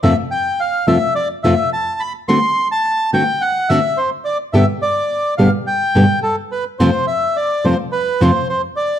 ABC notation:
X:1
M:4/4
L:1/16
Q:1/4=106
K:Flyd
V:1 name="Bandoneon"
e2 g2 f2 e2 d2 e2 a2 b2 | c'3 a3 g2 ^f2 e2 c2 d2 | e2 d4 f2 g4 A2 B2 | c2 e2 d2 c2 B2 c2 c2 d2 |]
V:2 name="Nylon-string guitar" clef=bass
[F,,C,F,A,CF]2 z4 [F,,C,F,A,CF]2 z2 [F,,C,F,A,CF]2 z4 | [D,A,C^F]2 z4 [D,A,CF]2 z2 [D,A,CF]2 z4 | [G,,B,,D,G,B,G]2 z4 [G,,B,,D,G,B,G]2 z2 [G,,B,,D,G,B,G]2 z4 | [F,,C,F,A,CF]2 z4 [F,,C,F,A,CF]2 z2 [F,,C,F,A,CF]2 z4 |]